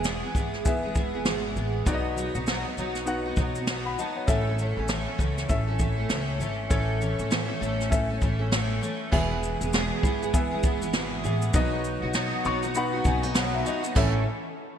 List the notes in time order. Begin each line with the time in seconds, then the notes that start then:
Already playing: E1 B3 E4 G#4 E5
0.04 E2 B2 E3 G#3 B3 G#4, snare, shaker
0.23 E3 G#3 B3 G#4
0.35 G#1 E3 G#3 B3 G#4, kick, shaker
0.53 snare
0.65 E1 B3 E4 G#4 E5, kick, shaker
0.83 E3 G#3 B3 G#4
0.95 E3 G#3 B3 G#4, kick, shaker
1.14 E3 G#3 B3 G#4
1.25 G#1 E2 B2 E3 G#3 B3 G#4, snare, shaker
1.55 A1 E3 G#3 B3 G#4, shaker
1.85 B1 B2 F#3 B3 D#4 F#4 D5, kick, shaker
1.94 D#5
2.16 F#3 B3 D#4 F#4, shaker
2.35 B1 B3 D#4 F#4, shaker
2.47 B2 F#3 B3 D#4 F#4, snare, shaker
2.65 B3 D#4 F#4
2.77 B1 F#3 B3 D#4 F#4, shaker
2.95 snare, shaker
3.05 B3 D#4 F#4 F#5, shaker
3.25 B3 D#4 F#4
3.36 B1 F#3 B3 D#4, kick, shaker
3.40 F#4
3.55 D#4 F#4, shaker
3.59 B3
3.67 B2 F#3 B3 D#4 F#4, snare, shaker
3.85 F#5 B5
3.99 F#3 B3 D#4 F#4 D#5 A5, shaker
4.16 C#5 F#5
4.27 A1 A2 E3 A3 C#4 E4 A4 E5, kick, shaker
4.47 A3 C#4 A4
4.58 E3 A3 C#4 A4, shaker
4.77 A1 A3 C#4 A4
4.88 A2 E3 A3 C#4 A4, snare, shaker
5.06 A3 C#4 A4
5.18 C#2 E3 A3 C#4 A4, kick, shaker
5.37 snare, shaker
5.48 A1 C#4 E4 A4 E5, kick, shaker
5.67 A3 C#4 A4
5.79 E3 A3 C#4 A4, kick, shaker
5.96 A3 C#4 A4
6.09 C#2 A2 E3 A3 C#4 A4, snare, shaker
6.39 G#1 E3 A3 C#4 A4, shaker
6.69 A1 A2 E3 A3 C#4 E4 A4 C#5, kick, shaker
7.00 E3 A3 C#4 A4, shaker
7.18 A1 A3 C#4 A4, shaker
7.30 A2 E3 A3 C#4 A4, snare, shaker
7.48 A3 C#4 A4
7.60 A1 E3 A3 C#4 A4, shaker
7.80 snare, shaker
7.89 C#4 E4 A4 E5, kick, shaker
8.09 A3 C#4 A4
8.21 A1 E3 A3 C#4 A4, kick, shaker
8.39 A3 C#4 A4
8.51 A2 E3 A3 C#4 A4, snare, shaker
8.81 E3 A3 C#4 A4, shaker
9.11 E1 E2 B2 E3 G#3 B3 E4 G#4 E5, kick, crash
9.30 E3 G#3 B3 G#4
9.42 E4, shaker
9.61 E1 E3 G#3 B3 G#4, shaker
9.73 E2 B2 E3 G#3 B3 G#4, snare, shaker
10.03 G#1 E3 G#3 B3 E4 G#4, kick, shaker
10.22 E3 G#3 B3 G#4, shaker
10.33 E1 B3 E4 G#4 E5, kick, shaker
10.51 E3 G#3 B3 G#4
10.63 E3 G#3 B3 E4 G#4, kick, shaker
10.81 E3 G#3 B3 G#4, shaker
10.93 G#1 E2 B2 E3 G#3 B3 G#4, snare, shaker
11.24 A1 E3 G#3 B3 G#4, shaker
11.42 shaker
11.53 B1 B2 F#3 B3 D#4 F#4 D#5, kick, shaker
11.71 B3 D#4 F#4
11.84 D#4, shaker
12.02 B1 B3 D#4 F#4
12.14 B2 F#3 B3 D#4 F#4, snare, shaker
12.44 B1 F#3 B3 D#4 F#4 C#6, shaker
12.63 B3 D#4 F#4, shaker
12.75 B3 D#4 F#4 F#5 B5, shaker
12.93 B3 D#4 F#4
13.04 B1 F#3 B3 C#4 D#4 F#4 G#5, kick, shaker
13.22 B3 D#4 F#4, shaker
13.34 B2 F#3 B3 D#4 F#4 F#5, snare, shaker
13.54 E5
13.65 F#3 B3 D#4 F#4 D#5, shaker
13.82 B3 D#4 F#4, shaker
13.95 A1 A2 E3 A3 C#4 E4 A4 E5, kick, crash